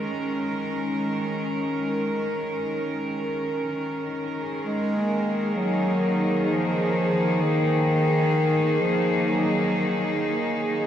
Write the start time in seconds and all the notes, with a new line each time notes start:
Already playing: D#3 G#3 C#4 A#4
3.68 D#3
4.40 G#4
4.64 G#3
4.98 A#3
5.56 F#3 D#4
6.49 F3
7.42 D#3
8.80 F3
9.27 F#3